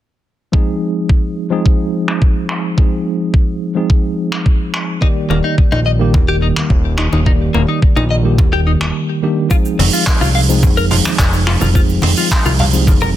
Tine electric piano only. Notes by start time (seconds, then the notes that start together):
0.52 F3 G#3 C4 D#4 G#4
1.50 F3 G#3 C4 D#4 G#4
2.77 F3 G#3 C4 D#4 G#4
3.75 F3 G#3 C4 D#4 G#4
5.01 D#3 G3 A#3 G4 D5
5.99 D#3 G3 A#3 G4
7.25 D#3 G3 A#3 G4 D5
8.23 D#3 G3 A#3 G4
9.22 D#3 G3 A#3 D4 G4
9.50 F3 G#3 C4 D#4 G#4
10.48 F3 G#3 C4 D#4 G#4
11.74 F3 G#3 C4 D#4 G#4
12.73 F3 G#3 C4 D#4 G#4